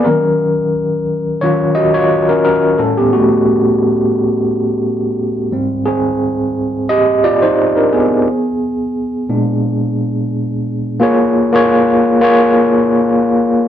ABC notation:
X:1
M:4/4
L:1/16
Q:"Swing 16ths" 1/4=88
K:Bbphr
V:1 name="Tine electric piano"
B8 [Fd]2 [Ge] [Fd]2 [DB] [DB]2 | [^C=A] [=B,=G] [=A,^F]12 z2 | z2 [=CA]6 [=Ge]2 [F=d] [E=c]2 [=DB] [_CA]2- | [CA]2 z12 z2 |
[B,FAd]2 z [B,FAd]3 z [B,FAd]4- [B,FAd] z4 |]
V:2 name="Tine electric piano" clef=bass
[E,G,D]2 z6 [E,G,D]2 z6 | [=A,,=G,]16 | [A,,=G,=C]2 z12 z2 | z6 [B,,A,=D]6 z4 |
z16 |]